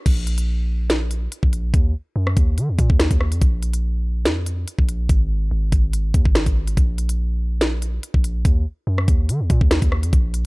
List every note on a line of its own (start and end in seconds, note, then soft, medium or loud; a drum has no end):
0.06 1.28 A#1 loud
0.06 kick loud
0.06 closed hi-hat medium
0.06 crash loud
0.27 closed hi-hat medium
0.38 closed hi-hat medium
0.90 snare loud
0.90 closed hi-hat medium
1.11 closed hi-hat medium
1.32 closed hi-hat medium
1.43 1.73 A#1 loud
1.43 kick medium
1.53 closed hi-hat medium
1.74 1.94 D#2 loud
1.74 kick loud
1.74 closed hi-hat medium
2.16 2.36 F#2 loud
2.27 cross-stick medium
2.37 2.59 D#2 loud
2.37 kick loud
2.37 closed hi-hat medium
2.58 2.70 D#3 loud
2.58 closed hi-hat medium
2.69 2.78 D#2 loud
2.79 2.89 A#2 loud
2.79 kick loud
2.79 closed hi-hat medium
2.90 3.10 D#2 loud
2.90 kick loud
3.00 snare loud
3.00 closed hi-hat medium
3.11 3.33 D#2 loud
3.11 kick medium
3.11 closed hi-hat medium
3.21 cross-stick medium
3.32 3.41 F2 loud
3.32 closed hi-hat medium
3.42 4.27 A#1 loud
3.42 kick loud
3.42 closed hi-hat medium
3.63 closed hi-hat medium
3.73 closed hi-hat medium
4.25 4.65 F2 loud
4.25 snare loud
4.25 closed hi-hat medium
4.46 closed hi-hat medium
4.68 closed hi-hat medium
4.79 5.08 A#1 loud
4.79 kick medium
4.89 closed hi-hat medium
5.09 5.50 G#1 loud
5.09 kick loud
5.09 closed hi-hat medium
5.51 5.71 G#1 loud
5.72 6.13 G#1 loud
5.72 kick loud
5.72 closed hi-hat medium
5.93 closed hi-hat medium
6.14 6.25 D#2 loud
6.14 kick loud
6.14 closed hi-hat medium
6.25 6.46 G#1 loud
6.25 kick loud
6.35 snare loud
6.35 closed hi-hat medium
6.46 6.76 G#1 loud
6.46 kick medium
6.46 closed hi-hat medium
6.67 closed hi-hat medium
6.77 7.99 A#1 loud
6.77 kick loud
6.77 closed hi-hat medium
6.98 closed hi-hat medium
7.09 closed hi-hat medium
7.61 snare loud
7.61 closed hi-hat medium
7.82 closed hi-hat medium
8.03 closed hi-hat medium
8.14 8.44 A#1 loud
8.14 kick medium
8.24 closed hi-hat medium
8.45 8.65 D#2 loud
8.45 kick loud
8.45 closed hi-hat medium
8.87 9.07 F#2 loud
8.98 cross-stick medium
9.08 9.30 D#2 loud
9.08 kick loud
9.08 closed hi-hat medium
9.29 9.42 D#3 loud
9.29 closed hi-hat medium
9.40 9.49 D#2 loud
9.50 9.61 A#2 loud
9.50 kick loud
9.50 closed hi-hat medium
9.61 9.81 D#2 loud
9.61 kick loud
9.71 snare loud
9.71 closed hi-hat medium
9.82 10.05 D#2 loud
9.82 kick medium
9.82 closed hi-hat medium
9.92 cross-stick medium
10.03 10.12 F2 loud
10.03 closed hi-hat medium
10.13 10.46 A#1 loud
10.13 kick loud
10.13 closed hi-hat medium
10.34 closed hi-hat medium